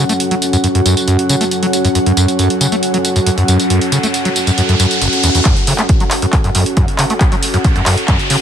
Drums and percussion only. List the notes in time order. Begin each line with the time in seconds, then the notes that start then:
0.09 closed hi-hat, tambourine
0.20 closed hi-hat, tambourine
0.31 closed hi-hat
0.42 closed hi-hat, tambourine
0.53 closed hi-hat, tambourine
0.64 closed hi-hat, tambourine
0.75 closed hi-hat
0.86 closed hi-hat, tambourine
0.97 closed hi-hat, tambourine
1.08 closed hi-hat, tambourine
1.19 closed hi-hat
1.29 closed hi-hat, tambourine
1.41 closed hi-hat, tambourine
1.51 closed hi-hat, tambourine
1.63 closed hi-hat
1.73 closed hi-hat, tambourine
1.85 closed hi-hat, tambourine
1.95 closed hi-hat, tambourine
2.06 closed hi-hat
2.17 closed hi-hat, tambourine
2.28 closed hi-hat, tambourine
2.39 closed hi-hat, tambourine
2.50 closed hi-hat
2.61 closed hi-hat, tambourine
2.72 closed hi-hat, tambourine
2.83 closed hi-hat, tambourine
2.94 closed hi-hat
3.05 closed hi-hat, tambourine
3.16 closed hi-hat, tambourine
3.26 closed hi-hat, tambourine
3.38 closed hi-hat
3.48 closed hi-hat, tambourine
3.60 closed hi-hat, tambourine
3.70 closed hi-hat, tambourine
3.81 closed hi-hat
3.92 closed hi-hat, tambourine
4.03 closed hi-hat, tambourine
4.14 closed hi-hat, tambourine
4.25 closed hi-hat
4.36 closed hi-hat, tambourine
4.47 closed hi-hat, tambourine
4.58 closed hi-hat, tambourine
4.69 closed hi-hat
4.80 closed hi-hat, tambourine
4.91 closed hi-hat, tambourine
5.02 closed hi-hat, tambourine
5.13 closed hi-hat
5.23 closed hi-hat, tambourine
5.35 closed hi-hat, tambourine
5.45 kick, clap, closed hi-hat
5.57 closed hi-hat
5.67 open hi-hat
5.79 clap, closed hi-hat
5.89 kick, closed hi-hat
6.00 closed hi-hat
6.11 clap, open hi-hat
6.22 closed hi-hat
6.33 kick, clap, closed hi-hat
6.44 closed hi-hat
6.55 open hi-hat
6.66 closed hi-hat
6.77 kick, closed hi-hat
6.88 closed hi-hat
6.99 clap, open hi-hat
7.10 closed hi-hat
7.21 kick, clap, closed hi-hat
7.32 closed hi-hat
7.43 open hi-hat
7.54 closed hi-hat
7.64 kick, closed hi-hat
7.76 closed hi-hat
7.86 clap, open hi-hat
7.98 closed hi-hat
8.08 kick, clap, closed hi-hat
8.19 closed hi-hat
8.30 open hi-hat